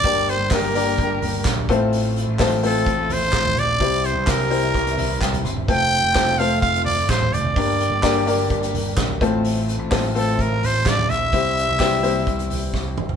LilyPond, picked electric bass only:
\new Staff \with { instrumentName = "Picked electric bass" } { \clef bass \time 4/4 \key f \major \tempo 4 = 128 g,,8. g,,16 g,,4 g,,4 bes,,8 a,,8~ | a,,8. a,,16 a,,4 a,,4 a,,8 bes,,8 | c,8. c,16 c,4 c,4 c,8 g,,8 | f,,8. f,,16 f,,4 f,,4 a,,8 f,,8 |
g,,8. g,,16 g,,4 g,,4 bes,,8 a,,8~ | a,,8. a,,16 a,,4 a,,4 a,,8 bes,,8 | c,8. c,16 c,4 c,4 c,8 g,,8 | }